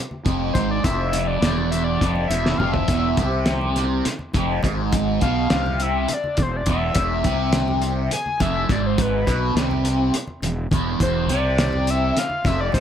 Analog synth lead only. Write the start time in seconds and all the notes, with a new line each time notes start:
0.53 C5
0.71 D5
0.84 E5
1.27 D5
1.71 E5
1.84 D5
2.28 E5
2.58 F5
2.72 E5
5.22 F5
5.82 E5
6.13 D5
6.42 C5
6.56 D5
6.70 E5
8.13 G#5
8.42 E5
8.71 D5
8.86 C5
9.02 B4
11.02 C5
11.30 D5
11.90 E5
12.18 F5
12.47 E5
12.61 D5
12.74 C5